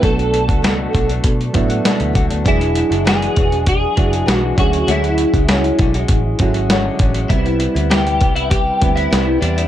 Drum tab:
HH |xxxxx-xxxxxxxxxx|xxxxxxxxx-xxx-xx|xxxxxxxxx-xxx-xx|xxxxxxxxx-xxx-xx|
SD |----o-------o---|----o-------o---|----o-------o---|----o-------o---|
BD |o--o--o-o-o---o-|o-----o-o-o---o-|---o--o-o-o---o-|o-----o-o-o-----|